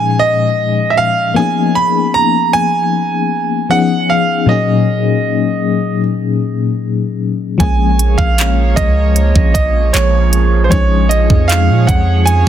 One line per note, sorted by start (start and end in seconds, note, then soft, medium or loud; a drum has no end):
0.00 1.31 A#2 medium
0.00 1.32 F3 medium
0.00 1.32 G#3 medium
0.00 1.33 C#4 medium
0.00 1.33 D#4 medium
0.00 1.34 G#4 medium
0.00 0.21 G#5 loud
0.00 downlifter medium
0.19 0.93 D#5 loud
0.90 0.98 E5 medium
0.97 1.38 F5 loud
1.34 3.66 F3 medium
1.34 3.65 A#3 medium
1.34 3.66 B3 medium
1.34 3.67 C#4 medium
1.34 1.77 G#5 loud
1.38 3.67 D#4 medium
1.38 3.68 G#4 medium
1.75 2.12 B5 loud
2.14 2.54 A#5 loud
2.53 3.66 G#5 loud
3.69 4.48 F3 medium
3.69 4.48 B3 medium
3.69 4.48 C#4 medium
3.69 4.49 D#4 medium
3.69 4.49 G#4 medium
3.69 4.11 F#5 loud
4.10 4.50 F5 medium
4.46 7.55 A#2 medium
4.46 7.55 F#3 medium
4.46 7.56 A#3 medium
4.46 7.56 C#4 medium
4.46 6.00 D#5 medium
4.50 7.57 D#4 medium
4.50 7.57 G#4 medium
7.58 8.16 A#1 loud
7.58 10.67 F3 medium
7.58 12.48 F3 medium
7.58 10.68 G#3 medium
7.58 10.67 A#3 medium
7.58 10.69 A#3 medium
7.58 10.69 C#4 medium
7.58 12.48 G#4 medium
7.58 10.69 C#5 medium
7.58 8.20 G#5 loud
7.58 kick loud
7.58 closed hi-hat medium
7.63 10.69 G#4 medium
7.99 closed hi-hat medium
8.18 8.75 A#1 loud
8.18 8.78 F5 medium
8.18 kick loud
8.38 clap loud
8.38 closed hi-hat medium
8.76 9.33 C#2 loud
8.76 9.53 D#5 medium
8.76 kick loud
8.76 closed hi-hat medium
9.16 closed hi-hat medium
9.36 9.92 A#1 loud
9.36 kick medium
9.54 9.91 D#5 medium
9.54 kick loud
9.54 closed hi-hat medium
9.93 10.69 A#1 loud
9.93 10.60 C#5 medium
9.93 clap loud
9.93 closed hi-hat medium
10.33 closed hi-hat medium
10.64 10.71 C5 medium
10.69 11.28 A#1 loud
10.69 12.48 F3 medium
10.69 12.48 G#3 medium
10.69 12.48 C#4 medium
10.69 12.48 D#4 medium
10.69 11.07 C#5 loud
10.69 12.48 C#5 medium
10.69 kick loud
10.69 closed hi-hat medium
10.74 12.48 G#4 medium
11.09 11.50 D#5 medium
11.09 closed hi-hat medium
11.30 11.71 F2 loud
11.30 kick loud
11.48 11.85 F5 loud
11.48 clap loud
11.48 closed hi-hat medium
11.69 11.88 A#2 loud
11.87 12.45 F2 loud
11.87 12.28 F#5 medium
11.87 kick medium
11.87 closed hi-hat medium
12.26 12.48 G#5 loud
12.26 closed hi-hat medium